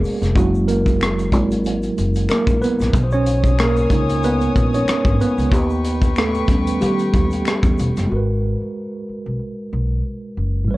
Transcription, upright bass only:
0.22 F1
0.36 F#1
1.33 G#1
1.98 F#1
2.47 A#1
2.80 A#1
2.94 B1
3.91 C#2
4.56 A#1
4.89 muted upright bass stroke
5.05 G#1
5.38 C#2
5.52 D#2
6.49 D#2
6.82 D#3
7.14 D#2
7.63 E2
7.79 E1
7.97 F#1
8.12 G#1
8.61 muted upright bass stroke
9.09 muted upright bass stroke
9.26 B1
9.73 B1
10.37 F#1
10.70 A1

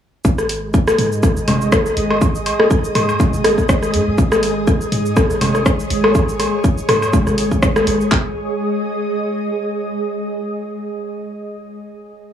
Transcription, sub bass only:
0.25 G#1
0.99 G#2
1.23 G#1
1.37 G#1
1.97 G#1
2.95 G#2
3.33 G#1
3.94 G#2
4.07 D#1
4.18 G#1
4.92 G#2
5.17 G#1
5.30 G#1
5.90 G#1
6.89 G#2
7.27 G#1
7.87 G#1
8.12 G#1

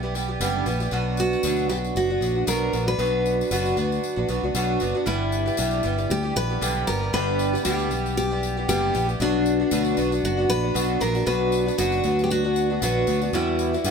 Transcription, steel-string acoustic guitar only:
1.20 F#4
1.70 G4
1.97 F#4
2.48 A#4
2.88 B4
5.07 E4
6.11 G4
6.36 B4
6.87 A#4
7.14 B4
7.65 G4
8.17 G4
8.69 G4
9.22 D4
10.25 F#4
10.50 B4
11.01 A#4
11.27 B4
11.78 F#4
12.24 G4
12.31 F#4
12.83 F#4
13.35 E4

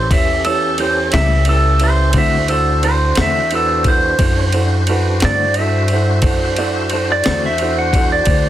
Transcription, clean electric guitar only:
1.14 A2 G3 C#4 E4
2.14 D3 A3 C4 F#4
3.18 D3 A3 C4 F#4
5.22 D3 A3 C4 F#4
7.25 D3 A3 C4 F#4

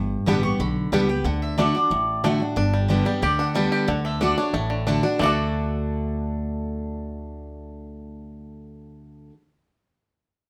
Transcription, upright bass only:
Already playing: G1
0.26 A1
0.59 B1
0.92 C#2
1.24 D2
1.91 A1
2.56 G1
3.22 D2
3.88 D2
4.54 A1
5.20 D2

